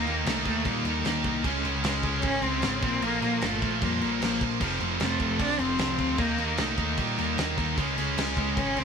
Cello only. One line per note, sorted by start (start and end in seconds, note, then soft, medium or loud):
0.00 0.25 A#3 loud
0.25 0.44 A3 loud
0.46 0.67 A3 loud
0.66 1.25 G3 medium
1.83 2.21 G#3 loud
2.22 2.45 C#4 loud
2.43 2.81 C4 loud
2.82 3.05 C4 loud
3.03 3.45 A#3 loud
3.44 3.85 A3 loud
3.83 4.42 G3 medium
5.03 5.42 A3 loud
5.41 5.62 D4 loud
5.60 6.21 C4 loud
6.19 6.60 A#3 loud
6.58 6.98 A3 medium
6.99 7.54 G3 medium
8.20 8.59 G#3 loud
8.58 8.80 C#4 loud
8.78 8.84 C4 loud